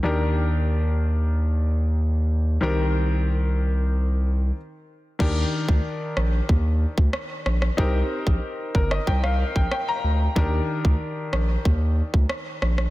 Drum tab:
CC |----------------|----------------|x---------------|----------------|
SD |----------------|----------------|------r-----r-rr|-------r-r--r---|
BD |----------------|----------------|o--o----o--o----|o--o--o-o--o----|

CC |----------------|
SD |------r-----r-rr|
BD |o--o----o--o----|